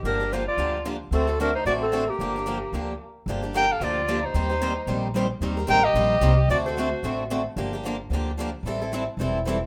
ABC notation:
X:1
M:4/4
L:1/8
Q:"Swing" 1/4=223
K:Gm
V:1 name="Clarinet"
B2 c d3 z2 | A2 B c d A2 G- | G6 z2 | z2 g f d3 c- |
c4- c z3 | z2 g e4- e | d c4 z3 | z8 |
z8 |]
V:2 name="Violin"
D2 F F3 z2 | C2 D E ^F C2 B,- | B,6 z2 | z2 B A F3 E- |
E4- E z3 | z2 B G4- G | ^F F4 z3 | z8 |
z8 |]
V:3 name="Steel-string acoustic guitar"
[D,F,B,DG] [B,DG] [D,F,B,DG] z [D,F,B,DG] z [D,F,B,DG] z | [D,A,C^FA] [CFA] [D,A,CFA] z [D,A,CFA] z [D,A,CFA] z | [D,F,B,DG] [B,DG] [D,F,B,DG] z [D,F,B,DG] z3 | [D,F,B,DG] [B,DG] [D,F,B,DG] z [D,F,B,DG] z [D,F,B,DG] z |
[E,G,CGc] [CGc] [E,G,CGc] z [E,G,CGc] z [E,G,CGc] z | [E,G,CGB] [CGB] [E,G,CGB] z [E,G,CGB] z [E,G,CGB] z | [D,A,C^FA] [CFA] [D,A,CFA] z [D,A,CFA] z [D,A,CFA] z | [D,F,B,DG] [B,DG] [D,F,B,DG] z [D,F,B,DG] z [D,F,B,DG] z |
[=E,G,C=EA] [CEA] [E,G,CEA] z [E,G,CEA] z [E,G,CEA] z |]
V:4 name="Steel-string acoustic guitar"
[D,F,B,DG] z [D,F,B,DG] z [D,F,B,DG] z [D,F,B,DG] z | [D,A,C^FA] z [D,A,CFA] z [D,A,CFA] z [D,A,CFA] z | [D,F,B,DG] z [D,F,B,DG] z [D,F,B,DG] z3 | [D,F,B,DG] z [D,F,B,DG] z [D,F,B,DG] z [D,F,B,DG] z |
[E,G,B,EGc] z [E,G,B,EGc] z [E,G,B,EGc] z [E,G,B,EGc] z | [E,G,B,EGc] z [E,G,B,EGc] z [E,G,B,EGc] z [E,G,B,EGc] z | [D,A,C^FA] z [D,A,CFA] z [D,A,CFA] z [D,A,CFA] z | [D,F,B,DG] z [D,F,B,DG] z [D,F,B,DG] z [D,F,B,DG] z |
[=E,G,C=EA] z [E,G,CEA] z [E,G,CEA] z [E,G,CEA] z |]
V:5 name="Upright bass" clef=bass
G,,,4 D,,4 | D,,4 A,,,4 | G,,,4 D,,2 z2 | G,,,4 D,,4 |
E,,4 B,,,4 | E,,2 A,,,2 B,,,2 C,,2 | D,,4 A,,,4 | G,,,4 D,,4 |
A,,,4 =E,,,4 |]